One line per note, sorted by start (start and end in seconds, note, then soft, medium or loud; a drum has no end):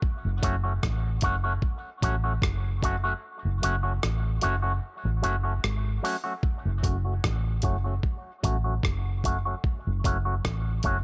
0.02 kick loud
0.25 0.41 F#1 loud
0.42 0.77 F#1 medium
0.42 0.54 F#3 medium
0.42 0.55 A3 medium
0.42 0.55 C#4 medium
0.42 0.55 F#4 medium
0.42 kick medium
0.42 closed hi-hat medium
0.64 0.73 F#3 soft
0.64 0.72 A3 soft
0.64 0.72 C#4 soft
0.64 0.72 F#4 soft
0.83 1.18 A1 medium
0.83 kick loud
0.83 cross-stick loud
1.21 1.57 F#1 medium
1.21 1.34 F#3 medium
1.21 1.34 A3 medium
1.21 1.35 C#4 medium
1.21 1.35 F#4 loud
1.21 kick medium
1.21 closed hi-hat medium
1.44 1.53 F#3 soft
1.44 1.53 A3 medium
1.44 1.52 C#4 medium
1.44 1.52 F#4 medium
1.62 kick loud
2.02 2.37 A1 medium
2.02 2.14 F#3 medium
2.02 2.15 A3 medium
2.02 2.15 C#4 loud
2.02 2.15 F#4 medium
2.02 kick medium
2.02 closed hi-hat medium
2.24 2.33 F#3 soft
2.24 2.33 A3 medium
2.24 2.32 C#4 soft
2.24 2.32 F#4 medium
2.42 3.12 F#1 medium
2.42 kick loud
2.42 cross-stick loud
2.83 2.94 F#3 medium
2.83 2.95 A3 medium
2.83 2.95 C#4 medium
2.83 2.96 F#4 loud
2.83 kick medium
2.83 closed hi-hat medium
3.04 3.13 F#3 medium
3.04 3.13 A3 medium
3.04 3.12 C#4 medium
3.04 3.12 F#4 medium
3.45 3.61 F#1 medium
3.62 3.98 F#1 medium
3.62 3.74 F#3 medium
3.62 3.75 A3 medium
3.62 3.75 C#4 medium
3.62 3.75 F#4 medium
3.62 closed hi-hat medium
3.83 3.93 F#3 medium
3.83 3.92 A3 soft
3.83 3.92 C#4 soft
3.83 3.92 F#4 medium
4.03 4.38 A1 medium
4.03 cross-stick loud
4.41 4.78 F#1 medium
4.41 4.54 F#3 medium
4.41 4.54 A3 loud
4.41 4.55 C#4 medium
4.41 4.55 F#4 medium
4.41 closed hi-hat medium
4.62 4.72 F#3 soft
4.62 4.72 A3 medium
4.62 4.72 C#4 medium
4.62 4.71 F#4 medium
5.05 5.21 A1 medium
5.22 5.58 F#1 medium
5.22 5.34 F#3 medium
5.22 5.35 A3 medium
5.22 5.35 C#4 medium
5.22 5.35 F#4 medium
5.22 closed hi-hat medium
5.44 5.53 F#3 soft
5.44 5.53 A3 medium
5.44 5.53 C#4 medium
5.44 5.52 F#4 medium
5.64 5.98 G#1 medium
5.64 cross-stick loud
6.03 6.15 F#3 medium
6.03 6.15 A3 medium
6.03 6.15 C#4 medium
6.03 6.16 F#4 medium
6.03 open hi-hat medium
6.24 6.33 F#3 medium
6.24 6.33 A3 medium
6.24 6.33 C#4 medium
6.24 6.32 F#4 medium
6.43 kick loud
6.65 6.81 F#1 medium
6.83 7.18 F#1 medium
6.83 6.95 F#3 medium
6.83 6.95 A3 medium
6.83 6.95 C#4 medium
6.83 6.96 F#4 medium
6.83 kick medium
6.83 closed hi-hat medium
7.05 7.14 F#3 soft
7.05 7.13 A3 soft
7.05 7.13 C#4 soft
7.05 7.13 F#4 medium
7.24 7.59 A1 medium
7.24 kick loud
7.24 cross-stick loud
7.62 7.98 F#1 medium
7.62 7.75 F#3 medium
7.62 7.75 A3 medium
7.62 7.76 C#4 medium
7.62 7.76 F#4 medium
7.62 kick medium
7.62 closed hi-hat medium
7.84 7.94 F#3 medium
7.84 7.93 A3 medium
7.84 7.93 C#4 medium
7.84 7.93 F#4 medium
8.03 kick medium
8.43 8.79 A1 medium
8.43 8.55 F#3 medium
8.43 8.56 A3 medium
8.43 8.56 C#4 medium
8.43 8.56 F#4 medium
8.43 kick medium
8.43 closed hi-hat medium
8.64 8.74 F#3 soft
8.64 8.73 A3 soft
8.64 8.73 C#4 medium
8.64 8.73 F#4 medium
8.83 9.53 F#1 medium
8.83 kick loud
8.83 cross-stick medium
9.24 9.36 F#3 medium
9.24 9.36 A3 medium
9.24 9.36 C#4 medium
9.24 9.37 F#4 medium
9.24 kick medium
9.24 closed hi-hat medium
9.45 9.54 F#3 soft
9.45 9.54 A3 soft
9.45 9.54 C#4 medium
9.45 9.53 F#4 medium
9.64 kick loud
9.87 10.02 F#1 medium
10.04 10.39 F#1 medium
10.04 10.16 F#3 medium
10.04 10.16 A3 medium
10.04 10.16 C#4 medium
10.04 10.17 F#4 medium
10.04 kick medium
10.04 closed hi-hat medium
10.25 10.34 F#3 soft
10.25 10.34 A3 soft
10.25 10.34 C#4 soft
10.25 10.33 F#4 medium
10.45 10.79 A1 medium
10.45 kick loud
10.45 cross-stick loud
10.83 11.04 F#1 medium
10.83 10.96 F#3 medium
10.83 10.96 A3 medium
10.83 10.96 C#4 medium
10.83 10.97 F#4 medium
10.83 kick medium
10.83 closed hi-hat medium